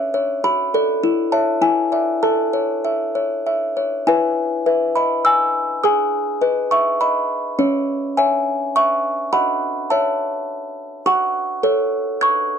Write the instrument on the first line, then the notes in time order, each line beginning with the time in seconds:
music box
Already playing: C#4 E5
0.14 C#5
0.44 F#4 B5
0.74 A4 D5
1.03 E4
1.32 C#5 E5 A5
1.62 E4 G#5
1.92 D5 E5
2.23 A4 A5
2.53 C#5
2.85 E5
3.15 C#5
3.46 E5
3.77 C#5
4.07 E4 B4 E5 G#5
4.66 B4 E5
4.96 D#5 B5
5.25 G#5 E6
5.83 G#4 G#5 D#6
6.41 B4 D#5
6.71 E5 C#6
7.01 D#5 B5
7.59 C#4 C#5
8.17 C#5 E5 G#5
8.76 E5 C#6
9.33 F#4 D#5 F#5 B5
9.90 C#5 E5 A5
11.06 F#4 F#5 C#6
11.63 A4 C#5
12.21 C#6 G#6